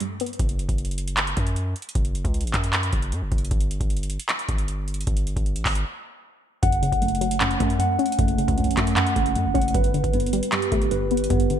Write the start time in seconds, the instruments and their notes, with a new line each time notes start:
Already playing: synth pluck G3 A3
0.00 synth pluck G2, closed hi-hat
0.20 synth pluck B3, closed hi-hat
0.26 closed hi-hat
0.33 closed hi-hat
0.39 808-style bass F#1, kick, closed hi-hat
0.49 closed hi-hat
0.59 closed hi-hat
0.69 808-style bass F#1, kick, closed hi-hat
0.78 closed hi-hat
0.85 closed hi-hat
0.91 closed hi-hat
0.98 closed hi-hat
1.08 closed hi-hat
1.17 clap, closed hi-hat
1.27 closed hi-hat
1.37 808-style bass F#2, kick, closed hi-hat
1.47 closed hi-hat
1.56 closed hi-hat
1.76 closed hi-hat
1.82 closed hi-hat
1.89 closed hi-hat
1.95 808-style bass F#1, kick, closed hi-hat
2.05 closed hi-hat
2.15 closed hi-hat
2.25 808-style bass C#2, kick, closed hi-hat
2.34 closed hi-hat
2.41 808-style bass A1, closed hi-hat
2.47 closed hi-hat
2.54 808-style bass F#2, kick, clap, closed hi-hat
2.64 closed hi-hat
2.73 clap, closed hi-hat
2.83 closed hi-hat
2.93 808-style bass F#1, kick, closed hi-hat
3.02 closed hi-hat
3.12 808-style bass F#2, closed hi-hat
3.22 808-style bass F#1
3.32 808-style bass F#1, kick, closed hi-hat
3.38 closed hi-hat
3.45 closed hi-hat
3.51 808-style bass G1, kick, closed hi-hat
3.61 closed hi-hat
3.71 closed hi-hat
3.80 808-style bass G1, kick, closed hi-hat
3.90 closed hi-hat
3.97 closed hi-hat
4.03 closed hi-hat
4.10 closed hi-hat
4.20 closed hi-hat
4.29 clap, closed hi-hat
4.39 closed hi-hat
4.49 808-style bass G1, kick, closed hi-hat
4.58 closed hi-hat
4.68 closed hi-hat
4.88 closed hi-hat
4.94 closed hi-hat
5.01 closed hi-hat
5.07 808-style bass G1, kick, closed hi-hat
5.17 closed hi-hat
5.27 closed hi-hat
5.36 808-style bass G1, kick, closed hi-hat
5.46 closed hi-hat
5.56 808-style bass A1, closed hi-hat
5.65 808-style bass G1, kick, clap, open hi-hat
5.75 closed hi-hat
6.63 808-style bass F#1, synth pluck F#2, tine electric piano F#5, kick, closed hi-hat
6.72 closed hi-hat
6.82 synth pluck C#3, closed hi-hat
6.92 808-style bass F#1, kick, closed hi-hat
7.02 synth pluck F#2, tine electric piano A3, closed hi-hat
7.08 closed hi-hat
7.15 closed hi-hat
7.21 synth pluck F#3, closed hi-hat
7.31 closed hi-hat
7.41 synth pluck F#2, tine electric piano C#4, clap, closed hi-hat
7.51 closed hi-hat
7.60 808-style bass F#2, synth pluck A3, kick, closed hi-hat
7.70 closed hi-hat
7.79 synth pluck F#2, tine electric piano F#5, closed hi-hat
7.99 synth pluck C#4, closed hi-hat
8.06 closed hi-hat
8.12 closed hi-hat
8.19 808-style bass F#1, synth pluck F#2, tine electric piano A3, kick, closed hi-hat
8.28 closed hi-hat
8.38 synth pluck C#3, closed hi-hat
8.48 808-style bass C#2, kick, closed hi-hat
8.57 synth pluck F#2, tine electric piano C#4, closed hi-hat
8.64 808-style bass A1, closed hi-hat
8.71 closed hi-hat
8.77 808-style bass F#2, synth pluck F#3, tine electric piano A3, kick, clap, closed hi-hat
8.87 closed hi-hat
8.97 synth pluck F#2, tine electric piano F#5, clap, closed hi-hat
9.07 closed hi-hat
9.16 808-style bass F#1, synth pluck A3, kick, closed hi-hat
9.26 closed hi-hat
9.36 synth pluck F#2, 808-style bass F#2, closed hi-hat
9.45 808-style bass F#1
9.54 808-style bass F#1, synth pluck C#4, tine electric piano F#5, kick, closed hi-hat
9.61 closed hi-hat
9.68 closed hi-hat
9.74 808-style bass G1, synth pluck G2, tine electric piano B4, kick, closed hi-hat
9.84 closed hi-hat
9.94 synth pluck D3, closed hi-hat
10.04 808-style bass G1, kick, closed hi-hat
10.13 synth pluck G2, tine electric piano B3, closed hi-hat
10.20 closed hi-hat
10.26 closed hi-hat
10.33 synth pluck G3, closed hi-hat
10.43 closed hi-hat
10.52 synth pluck G2, tine electric piano G4, clap, closed hi-hat
10.62 closed hi-hat
10.72 808-style bass G1, synth pluck A3, kick, closed hi-hat
10.82 closed hi-hat
10.91 synth pluck G2, tine electric piano B4, closed hi-hat
11.11 synth pluck B3, closed hi-hat
11.17 closed hi-hat
11.24 closed hi-hat
11.30 808-style bass G1, synth pluck G2, tine electric piano B3, kick, closed hi-hat
11.40 closed hi-hat
11.50 synth pluck D3, closed hi-hat